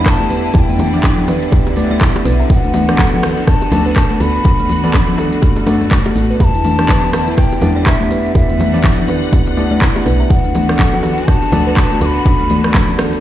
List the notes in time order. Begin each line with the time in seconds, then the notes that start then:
Already playing: E2 D3 G3 B3 D4 E4 G4 D5
0.06 B5, kick, cross-stick, clap, closed hi-hat, low bongo, shaker
0.10 A5
0.20 G4, high conga
0.30 B4, open hi-hat, low bongo, shaker
0.45 shaker
0.54 E2 E4 A5, kick, closed hi-hat, low bongo, shaker
0.59 G5
0.69 B3, closed hi-hat, high conga, shaker
0.79 open hi-hat, mid tom, low bongo, high conga, shaker
0.94 B3 D4 E4 G4 D5, mid tom, shaker
1.03 E4, kick, clap, closed hi-hat, low bongo, low conga, shaker
1.17 low conga
1.28 B4, open hi-hat, mid tom, high bongo, low bongo, shaker
1.42 closed hi-hat, shaker
1.52 D2 B3, kick, closed hi-hat, high bongo, low bongo, shaker
1.66 B3, closed hi-hat, high bongo, shaker
1.76 B3 D4 E4 G4 D5, open hi-hat, low bongo, high conga, shaker
1.91 D5, high conga, shaker
2.01 E4, kick, clap, closed hi-hat, low bongo, shaker
2.16 high bongo, high conga
2.25 B1 B4, open hi-hat, low bongo, shaker
2.40 E5, shaker
2.50 D2 B3 F#4 G5, kick, closed hi-hat, low bongo, shaker
2.55 F#5
2.64 D4, closed hi-hat, high conga, shaker
2.74 B3, open hi-hat, mid tom, low bongo, high conga, shaker
2.89 B3 D4 F#4 A4 D5, cross-stick, mid tom, shaker
2.98 A4, kick, clap, closed hi-hat, low bongo, low conga, shaker
3.13 F#4, low conga
3.23 cross-stick, open hi-hat, mid tom, high bongo, low bongo, shaker
3.37 D4, closed hi-hat, shaker
3.47 D4 A5, kick, cross-stick, closed hi-hat, low bongo, shaker
3.62 closed hi-hat, high bongo, shaker
3.72 D2 B3 D4 F#4 A4 D5, open hi-hat, low bongo, high conga, low conga, shaker
3.86 B4, shaker
3.96 A5, kick, cross-stick, clap, closed hi-hat, low bongo, shaker
4.10 F#4, high conga
4.20 D2 A4 B5, open hi-hat, low bongo, shaker
4.35 shaker
4.45 D2 A3 D4, kick, closed hi-hat, low bongo, shaker
4.59 A3, closed hi-hat, high conga, shaker
4.69 open hi-hat, mid tom, low bongo, high conga, shaker
4.84 B3 D4 F#4 A4 D5, mid tom, shaker
4.94 D4, kick, clap, closed hi-hat, low bongo, low conga, shaker
5.08 low conga
5.18 A4, open hi-hat, mid tom, high bongo, low bongo, shaker
5.33 closed hi-hat, shaker
5.42 F#2 A3, kick, closed hi-hat, high bongo, low bongo, shaker
5.56 A3, closed hi-hat, high bongo, shaker
5.67 B3 D4 F#4 A4 D5, open hi-hat, low bongo, high conga, shaker
5.81 high conga, shaker
5.91 B3, kick, clap, closed hi-hat, low bongo, shaker
6.06 A3, high bongo, high conga
6.16 A1, open hi-hat, low bongo, shaker
6.30 B4, shaker
6.40 E2 D3 G3 E4 B5, kick, closed hi-hat, low bongo, shaker
6.44 A5
6.55 E4, closed hi-hat, high conga, shaker
6.64 D4, open hi-hat, mid tom, low bongo, high conga, shaker
6.79 B3 D4 E4 G4 D5, cross-stick, mid tom, shaker
6.88 B4, kick, clap, closed hi-hat, low bongo, low conga, shaker
7.03 G4, low conga
7.13 cross-stick, open hi-hat, mid tom, high bongo, low bongo, shaker
7.28 E4, closed hi-hat, shaker
7.37 G5, kick, cross-stick, closed hi-hat, low bongo, shaker
7.52 closed hi-hat, high bongo, shaker
7.61 E2 B3 D4 E4 G4 D5, open hi-hat, low bongo, high conga, low conga, shaker
7.76 D5, shaker
7.86 E5, kick, cross-stick, clap, closed hi-hat, low bongo, shaker
8.00 G4, high conga
8.11 B4, open hi-hat, low bongo, shaker
8.26 shaker
8.35 E2 E4 E5 F#5, kick, closed hi-hat, low bongo, shaker
8.49 B3, closed hi-hat, high conga, shaker
8.60 open hi-hat, mid tom, low bongo, high conga, shaker
8.74 B3 D4 E4 G4 D5, mid tom, shaker
8.84 E4, kick, clap, closed hi-hat, low bongo, low conga, shaker
8.98 low conga
9.08 B4, open hi-hat, mid tom, high bongo, low bongo, shaker
9.23 closed hi-hat, shaker
9.33 D2 B3, kick, closed hi-hat, high bongo, low bongo, shaker
9.47 B3, closed hi-hat, high bongo, shaker
9.57 B3 D4 E4 G4 D5, open hi-hat, low bongo, high conga, shaker
9.71 D5, high conga, shaker
9.81 E4, kick, clap, closed hi-hat, low bongo, shaker
9.96 high bongo, high conga
10.06 B1 B4, open hi-hat, low bongo, shaker
10.20 E5, shaker
10.30 D2 D3 B3 F#4 F#5, kick, closed hi-hat, low bongo, shaker
10.44 D4, closed hi-hat, high conga, shaker
10.55 B3, open hi-hat, mid tom, low bongo, high conga, shaker
10.69 B3 D4 F#4 A4 D5, cross-stick, mid tom, shaker
10.79 A4, kick, clap, closed hi-hat, low bongo, low conga, shaker
10.93 F#4, low conga
11.03 open hi-hat, mid tom, high bongo, low bongo, shaker
11.18 D4, closed hi-hat, shaker
11.28 D4 A5, kick, cross-stick, closed hi-hat, low bongo, shaker
11.42 closed hi-hat, high bongo, shaker
11.52 D2 B3 D4 F#4 A4 D5, open hi-hat, low bongo, high conga, low conga, shaker
11.67 B4, shaker
11.76 B5, kick, cross-stick, clap, closed hi-hat, low bongo, shaker
11.81 A5
11.91 F#4, high conga
12.01 D2 A4 D6, open hi-hat, low bongo, shaker
12.06 B5
12.16 shaker
12.26 D2 D4, kick, closed hi-hat, low bongo, shaker
12.40 A3, closed hi-hat, high conga, shaker
12.50 open hi-hat, mid tom, low bongo, high conga, shaker
12.64 B3 D4 F#4 A4 D5, cross-stick, closed hi-hat, mid tom, shaker
12.74 D4, kick, clap, closed hi-hat, low bongo, low conga, shaker
12.89 closed hi-hat, low conga
12.98 A4, cross-stick, open hi-hat, mid tom, high bongo, low bongo, shaker
13.13 closed hi-hat, shaker